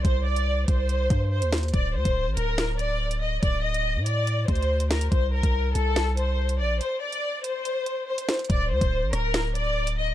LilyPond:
<<
  \new Staff \with { instrumentName = "Violin section" } { \time 4/4 \key c \dorian \tempo 4 = 142 c''8 d''4 c''4. c''8 r8 | d''8 c''4 bes'4 d''4 ees''8 | d''8 ees''4 d''4 c''4 bes'8 | c''8 bes'4 a'4 c''4 d''8 |
c''8 d''4 c''4. c''8 r8 | d''8 c''4 bes'4 d''4 ees''8 | }
  \new Staff \with { instrumentName = "808-style bass" } { \clef bass \time 4/4 \key c \dorian c,4. c,4 g,8. ees,8. | d,,8 d,16 d,,8 a,,16 d,,2~ d,,8 | d,,4~ d,,16 a,4~ a,16 d,4. | c,8. c,8. c,2 bes,,8 |
r1 | d,,8 d,16 d,,8 a,,16 d,,2~ d,,8 | }
  \new DrumStaff \with { instrumentName = "Drums" } \drummode { \time 4/4 <hh bd>8. hh16 r8 <hh bd>8 hh8 <hh bd>8 r16 hh16 <hh sn>32 hh32 hh32 hh32 | <hh bd>8. <hh bd>16 r8 hh8 <hh sn>8 hh8 r16 hh8. | <hh bd>8. hh16 r8 hh8 \tuplet 3/2 { hh16 r16 r16 <hh bd>16 hh16 hh16 } r16 hh16 <hh sn>16 hh16 | <hh bd>8. <hh bd>16 r8 hh8 <hh sn>8 hh8 r16 hh8. |
hh8. hh16 r8 hh8 hh8 hh8 r16 hh16 <hh sn>32 hh32 hh32 hh32 | <hh bd>8. <hh bd>16 r8 <hh ss>8 <hh sn>8 hh8 r16 hh8. | }
>>